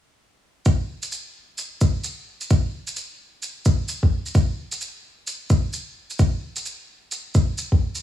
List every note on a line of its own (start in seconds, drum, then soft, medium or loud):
0.66 kick loud
0.66 shaker soft
1.03 shaker soft
1.12 shaker medium
1.58 shaker soft
1.81 kick medium
1.81 shaker medium
2.04 shaker medium
2.41 shaker soft
2.50 kick loud
2.50 shaker soft
2.87 shaker medium
2.96 shaker medium
3.42 shaker soft
3.65 kick medium
3.65 shaker medium
3.88 shaker medium
4.03 kick medium
4.26 shaker soft
4.35 kick loud
4.35 shaker soft
4.72 shaker soft
4.81 shaker soft
5.27 shaker soft
5.50 kick loud
5.50 shaker medium
5.73 shaker soft
6.10 shaker soft
6.19 kick loud
6.19 shaker soft
6.56 shaker soft
6.66 shaker medium
7.12 shaker soft
7.35 kick medium
7.35 shaker medium
7.58 shaker medium
7.72 kick medium
7.95 shaker soft